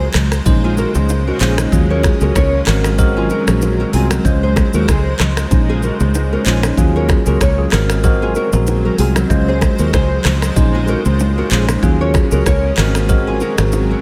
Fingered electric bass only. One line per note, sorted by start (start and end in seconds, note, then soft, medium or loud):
0.14 0.39 C#2 loud
0.46 0.84 A#1 loud
0.95 1.30 C#2 medium
1.41 1.65 A#1 loud
1.72 2.10 D#2 loud
2.21 2.32 C#2 loud
2.35 2.60 C#2 medium
2.67 3.29 G#1 loud
3.47 3.83 A#1 medium
3.93 4.18 C2 medium
4.25 4.63 C#2 loud
4.74 4.85 D#2 medium
4.88 5.13 C#2 medium
5.20 5.44 C#2 loud
5.51 5.89 A#1 loud
6.00 6.36 C#2 medium
6.46 6.70 A#1 loud
6.78 7.16 D#2 loud
7.27 7.38 C#2 loud
7.41 7.65 C#2 medium
7.72 8.35 G#1 loud
8.53 8.88 A#1 loud
8.99 9.23 C2 loud
9.30 9.68 C#2 loud
9.79 9.90 D#2 medium
9.93 10.18 C#2 medium
10.25 10.49 C#2 loud
10.56 10.94 A#1 loud
11.05 11.41 C#2 loud
11.51 11.76 A#1 loud
11.83 12.21 D#2 loud
12.32 12.43 C#2 medium
12.46 12.70 C#2 medium
12.77 13.40 G#1 loud
13.58 13.94 G#1 medium